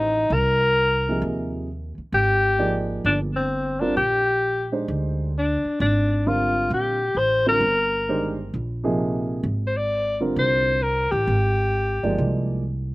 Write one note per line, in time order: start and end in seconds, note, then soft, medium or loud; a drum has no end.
0.00 0.28 A1 medium
0.00 0.35 D#4 medium
0.30 1.18 C2 medium
0.30 1.24 A#4 loud
1.09 1.66 C3 medium
1.09 1.66 F3 soft
1.09 1.66 A#3 medium
1.09 1.66 D#4 soft
1.09 1.66 G#4 medium
1.22 1.94 D#2 medium
1.98 muted upright bass stroke soft
2.12 3.01 G#1 medium
2.12 2.86 G4 loud
2.58 3.29 F3 medium
2.58 3.29 A#3 medium
2.58 3.29 D#4 medium
2.58 3.29 G#4 medium
2.58 3.29 D5 medium
3.05 3.92 G1 medium
3.05 3.19 D4 medium
3.36 3.82 C4 medium
3.80 3.95 D3 medium
3.80 3.95 G3 medium
3.80 3.95 C4 medium
3.80 3.96 D4 medium
3.80 3.95 F4 medium
3.80 3.95 A#4 medium
3.97 4.84 A#1 medium
3.97 4.68 G4 loud
4.72 5.30 G#3 soft
4.72 5.31 D4 soft
4.72 5.30 D#4 medium
4.72 5.31 G4 soft
4.72 5.31 C5 medium
4.88 5.60 D2 medium
5.38 5.79 D4 medium
5.64 muted upright bass stroke soft
5.80 6.67 G#1 medium
5.80 6.29 D4 medium
6.27 6.95 D3 medium
6.27 6.95 G3 medium
6.27 6.96 C4 soft
6.27 6.95 F4 soft
6.27 6.72 F4 medium
6.27 6.96 A#4 medium
6.70 7.13 A#1 medium
6.70 7.19 G4 medium
7.15 7.58 A1 medium
7.15 7.47 C5 medium
7.46 7.60 D3 medium
7.46 7.61 G3 medium
7.46 7.61 C4 medium
7.46 7.60 F4 medium
7.46 7.61 A#4 medium
7.46 8.35 A#4 medium
7.60 8.49 G1 medium
8.09 8.35 D#3 medium
8.09 8.35 G#3 medium
8.09 8.35 D4 medium
8.09 8.36 G4 medium
8.09 8.35 C5 medium
8.54 9.41 A#1 medium
8.84 9.42 C3 medium
8.84 9.42 F3 medium
8.84 9.42 A#3 medium
8.84 9.42 D#4 medium
8.84 9.42 G#4 medium
9.43 10.32 G#1 medium
9.67 9.79 C5 medium
9.77 10.22 D5 medium
10.20 10.79 D3 medium
10.20 10.79 G3 medium
10.20 10.79 C4 medium
10.20 10.79 F4 medium
10.20 10.79 A#4 medium
10.36 11.08 C2 medium
10.36 10.84 C5 medium
10.83 11.13 A#4 medium
11.12 11.27 A1 medium
11.12 12.49 G4 medium
11.27 11.99 G#1 medium
12.03 12.18 G1 medium
12.03 12.62 F3 medium
12.03 12.62 G#3 medium
12.03 12.62 A#3 medium
12.03 12.62 D#4 medium
12.03 12.62 D5 medium
12.18 12.91 C2 medium